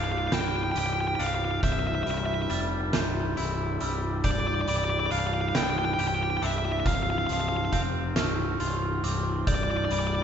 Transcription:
0.00 0.28 C1 medium
0.00 1.19 G2 medium
0.00 2.50 G3 medium
0.00 1.18 D4 medium
0.00 0.32 F6 medium
0.04 0.11 F5 medium
0.12 0.18 F5 medium
0.18 0.26 F5 medium
0.27 0.35 F5 medium
0.32 0.72 C1 medium
0.32 1.63 B3 medium
0.32 0.41 G5 medium
0.32 1.19 G6 medium
0.32 snare medium
0.32 closed hi-hat medium
0.41 0.48 G5 medium
0.48 0.56 G5 medium
0.56 0.63 G5 medium
0.63 0.71 G5 medium
0.71 1.15 C1 medium
0.71 3.37 G4 medium
0.71 0.78 G5 medium
0.76 0.85 G5 medium
0.76 closed hi-hat medium
0.86 0.93 G5 medium
0.93 1.00 G5 medium
1.01 1.07 G5 medium
1.07 1.15 G5 medium
1.15 1.59 C1 medium
1.15 1.63 D4 medium
1.15 1.23 G5 medium
1.15 1.63 F6 medium
1.20 1.26 F5 medium
1.20 closed hi-hat medium
1.26 1.34 F5 medium
1.35 1.43 F5 medium
1.45 1.51 F5 medium
1.51 1.59 F5 medium
1.63 2.03 C1 medium
1.63 3.81 C2 medium
1.63 1.72 E5 medium
1.63 2.50 G6 medium
1.63 kick medium
1.63 closed hi-hat medium
1.72 1.79 E5 medium
1.79 1.87 E5 medium
1.87 1.94 E5 medium
1.95 2.03 E5 medium
2.03 2.46 C1 medium
2.03 4.23 G2 medium
2.03 2.10 E5 medium
2.03 closed hi-hat medium
2.11 2.17 E5 medium
2.18 2.25 E5 medium
2.26 2.33 E5 medium
2.34 2.41 E5 medium
2.42 2.50 E5 medium
2.50 2.90 F1 medium
2.50 3.80 G3 medium
2.50 2.58 E5 soft
2.50 2.94 A6 medium
2.50 closed hi-hat medium
2.93 3.34 C1 medium
2.93 4.24 C3 medium
2.93 3.81 G6 medium
2.93 snare medium
2.93 closed hi-hat medium
3.37 3.77 C1 medium
3.37 4.24 E4 medium
3.37 closed hi-hat medium
3.80 4.21 C1 medium
3.80 4.25 G3 medium
3.80 4.25 E6 medium
3.80 closed hi-hat medium
4.24 4.64 C1 medium
4.24 6.42 G2 medium
4.24 4.30 D5 medium
4.24 5.12 G6 medium
4.24 kick loud
4.24 closed hi-hat medium
4.31 4.38 D5 medium
4.40 4.47 D5 medium
4.47 4.54 D5 medium
4.55 4.61 D5 medium
4.61 4.69 D5 medium
4.68 5.08 C1 medium
4.68 6.86 G3 medium
4.68 4.76 D5 medium
4.68 closed hi-hat medium
4.77 4.84 D5 medium
4.84 4.90 D5 medium
4.90 4.97 D5 medium
5.00 5.06 D5 medium
5.06 5.11 D5 medium
5.11 5.51 C1 medium
5.11 6.40 D4 medium
5.11 5.18 F5 medium
5.11 5.55 F6 medium
5.11 closed hi-hat medium
5.19 5.26 F5 medium
5.27 5.33 F5 medium
5.34 5.41 F5 medium
5.41 5.48 F5 medium
5.49 5.56 F5 medium
5.55 5.95 C1 medium
5.55 6.86 B3 medium
5.55 5.62 G5 medium
5.55 6.42 G6 medium
5.55 snare medium
5.55 closed hi-hat medium
5.63 5.70 G5 medium
5.70 5.77 G5 medium
5.78 5.84 G5 medium
5.85 5.92 G5 medium
5.93 6.00 G5 medium
5.98 6.38 C1 medium
5.98 6.86 G4 medium
5.98 6.07 G5 medium
5.98 closed hi-hat medium
6.08 6.14 G5 medium
6.15 6.22 G5 medium
6.23 6.30 G5 medium
6.30 6.37 G5 medium
6.37 6.45 G5 medium
6.42 6.82 C1 medium
6.42 6.86 D4 medium
6.42 6.50 E5 medium
6.42 6.86 E6 medium
6.42 closed hi-hat medium
6.51 6.58 E5 medium
6.58 6.65 E5 medium
6.65 6.72 E5 medium
6.72 6.79 E5 medium
6.80 6.86 E5 medium
6.85 7.25 C1 medium
6.85 9.04 F2 medium
6.85 6.94 F5 medium
6.85 7.73 F6 medium
6.85 kick loud
6.85 closed hi-hat medium
6.95 7.02 F5 medium
7.03 7.10 F5 medium
7.10 7.18 F5 medium
7.18 7.26 F5 medium
7.27 7.69 C1 medium
7.27 9.47 F3 medium
7.27 7.33 F5 medium
7.27 closed hi-hat medium
7.33 7.40 F5 medium
7.41 7.48 F5 medium
7.48 7.56 F5 medium
7.57 7.64 F5 medium
7.65 7.72 F5 medium
7.72 8.12 F1 medium
7.72 9.02 C4 medium
7.72 7.81 F5 medium
7.72 8.16 G6 medium
7.72 kick medium
7.72 closed hi-hat medium
8.16 8.56 C1 medium
8.16 9.47 A3 medium
8.16 9.03 F6 medium
8.16 snare medium
8.16 closed hi-hat medium
8.60 8.99 C1 medium
8.60 9.47 F4 medium
8.60 closed hi-hat medium
9.03 9.43 C1 medium
9.03 9.47 C4 medium
9.03 9.47 D6 medium
9.03 closed hi-hat medium
9.47 9.87 C1 medium
9.47 10.24 G2 medium
9.47 9.55 D5 medium
9.47 10.24 G6 medium
9.47 kick loud
9.47 closed hi-hat medium
9.55 9.63 D5 medium
9.63 9.70 D5 medium
9.71 9.77 D5 medium
9.77 9.84 D5 medium
9.85 9.92 D5 medium
9.90 10.24 C1 medium
9.90 10.24 G3 medium
9.90 9.99 D5 medium
9.90 closed hi-hat medium
9.99 10.07 D5 medium
10.07 10.15 D5 medium
10.15 10.23 D5 medium

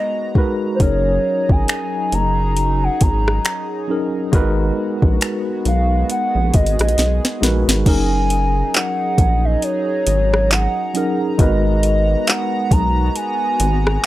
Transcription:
0.00 0.76 G#3 medium
0.00 0.77 B3 medium
0.00 0.77 F#4 medium
0.00 0.32 D#5 medium
0.00 6.06 A#5 medium
0.35 0.66 G#3 medium
0.35 0.66 D#4 medium
0.35 0.66 F#4 medium
0.35 0.67 A#4 medium
0.35 0.67 B4 medium
0.35 kick medium
0.75 1.93 F#3 medium
0.75 0.83 C5 medium
0.80 1.19 F#1 loud
0.80 4.30 F#3 medium
0.80 1.93 C#4 medium
0.80 4.29 D#4 medium
0.80 1.94 D#4 medium
0.80 4.29 G#4 medium
0.80 1.94 G#4 medium
0.80 1.95 A#4 medium
0.80 1.53 C#5 loud
0.80 kick loud
0.80 closed hi-hat medium
1.49 1.66 G#1 medium
1.49 2.15 G#5 loud
1.49 kick medium
1.68 finger snap loud
1.68 closed hi-hat medium
2.12 2.89 F#1 medium
2.12 2.85 A#5 loud
2.12 closed hi-hat medium
2.57 closed hi-hat medium
2.84 3.03 F#5 medium
3.01 3.39 G#1 loud
3.01 3.90 A#5 loud
3.01 kick medium
3.01 closed hi-hat medium
3.28 cross-stick loud
3.45 finger snap loud
3.45 closed hi-hat medium
3.88 4.18 F#3 medium
3.88 4.19 C#4 medium
3.88 4.19 D#4 medium
3.88 4.20 G#4 medium
3.88 4.20 A#4 medium
4.32 4.71 G#1 loud
4.32 5.46 G#3 medium
4.32 7.82 B3 medium
4.32 5.46 D#4 medium
4.32 7.82 F#4 medium
4.32 5.47 F#4 medium
4.32 5.47 A#4 medium
4.32 5.48 B4 loud
4.32 kick loud
4.32 closed hi-hat medium
5.02 5.19 A#1 loud
5.02 kick loud
5.21 finger snap loud
5.21 closed hi-hat medium
5.65 6.04 B1 medium
5.65 6.07 F5 loud
5.65 closed hi-hat medium
6.09 7.84 G#4 medium
6.09 6.56 F#5 loud
6.09 closed hi-hat medium
6.35 6.51 A#1 medium
6.54 6.76 G#1 loud
6.54 6.80 D#5 loud
6.54 kick medium
6.54 closed hi-hat medium
6.66 closed hi-hat medium
6.79 6.95 A#1 medium
6.79 7.38 D#5 medium
6.79 cross-stick loud
6.79 closed hi-hat medium
6.88 closed hi-hat medium
6.98 7.20 B1 medium
6.98 snare medium
6.98 closed hi-hat medium
7.25 snare medium
7.41 7.64 A#1 medium
7.41 7.71 G#3 medium
7.41 7.72 D#4 medium
7.41 7.72 F#4 medium
7.41 7.73 A#4 medium
7.41 7.73 B4 medium
7.41 snare medium
7.68 7.84 G#1 medium
7.68 snare medium
7.85 8.63 F#1 loud
7.85 8.99 F#3 medium
7.85 11.35 F#3 medium
7.85 8.99 C#4 medium
7.85 11.35 D#4 medium
7.85 9.00 D#4 medium
7.85 11.35 G#4 medium
7.85 9.00 G#4 medium
7.85 9.01 A#4 medium
7.85 8.76 G#5 loud
7.85 14.06 A#5 medium
7.85 kick loud
7.85 closed hi-hat medium
7.85 crash medium
8.30 closed hi-hat medium
8.74 9.46 F#5 loud
8.74 clap loud
8.74 closed hi-hat medium
9.18 9.57 A#1 medium
9.18 kick medium
9.18 closed hi-hat medium
9.45 9.65 D#5 medium
9.62 10.53 C#5 loud
9.62 closed hi-hat medium
10.07 10.67 G#1 medium
10.07 closed hi-hat medium
10.34 cross-stick loud
10.51 11.21 F#5 loud
10.51 clap loud
10.51 closed hi-hat medium
10.94 11.24 F#3 medium
10.94 11.25 C#4 medium
10.94 11.25 D#4 medium
10.94 11.26 G#4 medium
10.94 11.26 A#4 medium
10.94 closed hi-hat medium
11.38 12.16 G#1 loud
11.38 12.52 G#3 medium
11.38 14.06 G#3 medium
11.38 14.06 B3 medium
11.38 12.52 D#4 medium
11.38 14.06 F#4 medium
11.38 12.53 F#4 medium
11.38 12.53 A#4 medium
11.38 12.54 B4 medium
11.38 12.29 D#5 loud
11.38 kick loud
11.38 closed hi-hat medium
11.83 closed hi-hat medium
12.27 12.74 F#5 loud
12.27 clap loud
12.27 closed hi-hat medium
12.71 13.10 B1 loud
12.71 13.17 A#5 loud
12.71 kick loud
12.71 closed hi-hat medium
13.16 14.06 G#5 loud
13.16 closed hi-hat medium
13.60 13.98 G#1 loud
13.60 closed hi-hat medium
13.87 cross-stick loud

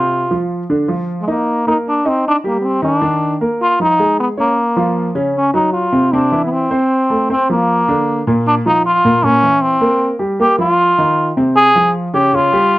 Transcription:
0.00 0.24 C3 medium
0.00 0.24 C4 medium
0.00 0.47 F4 medium
0.31 0.62 F3 medium
0.31 0.62 F4 medium
0.70 0.85 D3 medium
0.70 0.85 D4 medium
0.88 1.20 F3 medium
0.88 1.20 F4 medium
1.21 1.30 G#3 medium
1.28 1.67 A#3 medium
1.28 1.59 D#4 medium
1.28 1.59 D#5 medium
1.67 1.98 A#3 medium
1.67 1.76 D#4 medium
1.67 1.99 A#4 medium
1.89 2.10 D4 medium
2.05 2.26 C4 medium
2.05 2.37 D#4 medium
2.05 2.37 D#5 medium
2.28 2.36 D4 loud
2.44 2.76 G3 medium
2.44 2.59 A#3 medium
2.44 2.76 G4 medium
2.61 2.67 B3 medium
2.61 2.84 C4 medium
2.82 2.98 D#3 medium
2.82 3.38 D4 medium
2.82 2.98 D#4 medium
3.02 3.34 D#3 medium
3.02 3.34 D4 medium
3.41 3.73 A#3 medium
3.41 3.73 A#4 medium
3.62 3.79 F4 loud
3.80 3.96 F3 medium
3.80 4.17 D#4 medium
3.80 3.96 F4 medium
3.99 4.31 G#3 medium
3.99 4.31 G#4 medium
4.20 4.28 B3 medium
4.37 5.13 A#3 medium
4.37 4.54 C#4 medium
4.37 4.54 C#5 medium
4.76 5.08 F3 medium
4.76 5.09 F4 medium
5.15 5.47 C#3 medium
5.15 5.47 C#4 medium
5.36 5.54 C#4 medium
5.54 5.86 F#3 medium
5.54 5.72 D#4 medium
5.54 5.86 F#4 medium
5.73 6.14 F4 medium
5.92 6.09 C3 medium
5.92 6.09 C4 medium
6.13 6.29 C3 medium
6.13 6.29 C4 medium
6.13 6.44 D4 medium
6.32 6.64 E3 medium
6.32 6.64 E4 medium
6.45 6.54 B3 medium
6.52 7.29 C4 medium
6.70 7.02 C4 medium
6.70 7.03 C5 medium
7.10 7.26 A3 medium
7.10 7.26 A4 medium
7.30 7.45 C4 medium
7.30 7.48 C4 medium
7.30 7.45 C5 medium
7.49 7.81 F3 medium
7.49 8.23 A#3 medium
7.49 7.81 F4 medium
7.88 8.20 D3 medium
7.88 8.20 D4 medium
8.27 8.59 A#2 medium
8.27 8.59 A#3 medium
8.47 8.55 D4 loud
8.66 8.97 F3 medium
8.66 8.84 D#4 medium
8.66 8.97 F4 medium
8.86 9.25 F4 loud
9.05 9.20 A#2 medium
9.05 9.20 A#3 medium
9.23 9.39 A#2 medium
9.23 9.39 A#3 medium
9.23 9.63 C#4 loud
9.43 9.74 E3 medium
9.43 9.75 E4 medium
9.62 10.12 C4 medium
9.81 10.13 A#3 medium
9.81 10.13 A#4 medium
10.19 10.35 G3 medium
10.19 10.35 G4 medium
10.39 10.55 A#3 medium
10.39 10.58 G4 medium
10.39 10.55 A#4 medium
10.58 10.90 F3 medium
10.58 10.90 F4 medium
10.58 11.32 F4 loud
10.98 11.30 D#3 medium
10.98 11.30 D#4 medium
11.37 11.68 C3 medium
11.37 11.68 C4 medium
11.56 11.92 G#4 loud
11.75 12.07 F3 medium
11.75 12.07 F4 medium
12.14 12.29 C#3 medium
12.14 12.30 C#4 medium
12.14 12.37 G4 loud
12.33 12.49 C#3 medium
12.33 12.49 C#4 medium
12.33 12.79 F4 loud
12.52 12.79 G3 medium
12.52 12.79 G4 medium

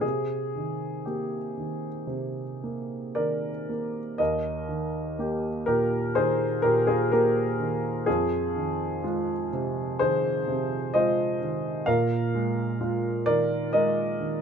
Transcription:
0.01 2.05 C3 soft
0.01 1.05 G#4 medium
0.56 1.37 D#3 soft
1.05 1.88 A#3 soft
1.05 3.69 G4 soft
1.57 2.41 D#3 soft
2.07 4.15 C3 soft
2.64 3.49 A#3 soft
3.15 3.99 D#3 soft
3.15 4.15 A#4 medium
3.15 4.19 D5 medium
3.69 4.20 A#3 soft
4.18 6.11 D#2 medium
4.18 5.63 A#4 medium
4.18 5.67 D#5 medium
4.69 5.48 D#3 soft
5.19 5.63 A#3 soft
5.19 5.64 G4 soft
5.66 6.45 A#2 soft
5.66 6.12 G4 medium
5.66 6.15 A#4 medium
6.15 6.93 D#3 medium
6.15 6.60 G#4 medium
6.15 6.63 C5 medium
6.62 7.41 A#2 soft
6.62 6.86 G4 medium
6.62 6.87 A#4 medium
6.87 7.10 F4 medium
6.87 7.11 G#4 medium
7.12 7.56 A#3 soft
7.12 8.04 G4 medium
7.12 8.07 A#4 medium
7.60 8.07 D#3 soft
8.06 9.96 F2 medium
8.06 9.02 F4 medium
8.06 9.99 G#4 medium
8.56 9.33 D#3 soft
9.04 9.48 G#3 soft
9.04 9.48 F4 medium
9.53 10.29 C3 medium
9.99 10.75 D#3 soft
9.99 10.90 G#4 medium
9.99 10.93 C5 medium
10.48 11.22 C3 soft
10.94 11.37 G#3 soft
10.94 11.37 F4 soft
10.94 11.84 C5 medium
10.94 11.87 D#5 medium
11.42 11.88 D#3 soft
11.86 13.70 A#2 medium
11.86 13.24 A#4 medium
11.86 13.27 F5 medium
12.35 12.79 G#3 soft
12.81 13.23 G#3 soft
12.81 13.23 F4 soft
13.26 14.01 D#3 soft
13.26 13.70 A#4 medium
13.26 13.73 D5 medium
13.73 14.42 G#3 medium
13.73 14.42 A#4 medium
13.73 14.42 D#5 medium
14.20 14.42 D#3 soft

